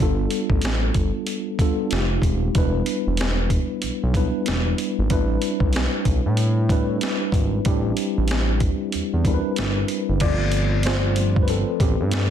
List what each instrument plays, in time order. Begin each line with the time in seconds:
0.00 analog synth bass G1, tine electric piano G3 B3 D4 F4 A4, kick
0.31 closed hi-hat
0.50 analog synth bass A1, kick
0.61 analog synth bass A1, snare, closed hi-hat
0.94 analog synth bass G1, kick, closed hi-hat
1.27 closed hi-hat
1.59 tine electric piano G3 B3 D4 F4 A4, kick, closed hi-hat
1.91 analog synth bass F1, tine electric piano G#3 C4 F4 G4, snare, closed hi-hat
2.22 analog synth bass D#1, kick, closed hi-hat
2.55 analog synth bass E1, tine electric piano G3 B3 D4 E4 B4, kick, closed hi-hat
2.86 closed hi-hat
3.07 analog synth bass E1
3.17 snare, closed hi-hat
3.50 kick, closed hi-hat
3.82 analog synth bass B1, closed hi-hat
4.03 analog synth bass B1
4.14 tine electric piano G3 B3 D4 E4 B4, kick, closed hi-hat
4.46 analog synth bass E1, snare, closed hi-hat
4.78 closed hi-hat
4.99 analog synth bass G#1
5.10 analog synth bass A1, tine electric piano G3 B3 D4 E4 B4, kick, closed hi-hat
5.17 tine electric piano C4
5.42 closed hi-hat
5.60 analog synth bass B1, kick
5.73 snare, closed hi-hat
6.05 analog synth bass B1, kick, closed hi-hat
6.26 analog synth bass A2
6.37 closed hi-hat
6.69 tine electric piano G3 C4 D4 E4 B4, kick, closed hi-hat
7.01 snare, closed hi-hat
7.32 analog synth bass G#1, kick, closed hi-hat
7.65 analog synth bass A1, tine electric piano G3 C4 D4 E4 G4, kick, closed hi-hat
7.97 closed hi-hat
8.18 analog synth bass A1
8.28 snare, closed hi-hat
8.60 kick, closed hi-hat
8.92 analog synth bass E2, closed hi-hat
9.13 analog synth bass E2
9.25 tine electric piano G3 C4 D4 E4 A#4, kick, closed hi-hat
9.34 tine electric piano B4
9.56 analog synth bass G1, snare, closed hi-hat
9.88 closed hi-hat
10.09 analog synth bass F#1
10.20 analog synth bass G1, tine electric piano F3 A3 C4 F4 D5, kick, closed hi-hat, crash
10.52 closed hi-hat
10.83 tine electric piano C5, snare, closed hi-hat
10.87 tine electric piano F4
11.16 tine electric piano F3 A3 C4, closed hi-hat
11.36 kick
11.43 tine electric piano B4
11.48 tine electric piano C4 A4, closed hi-hat
11.80 analog synth bass A1, tine electric piano B3 G4, kick, closed hi-hat
12.00 analog synth bass G2
12.11 snare, closed hi-hat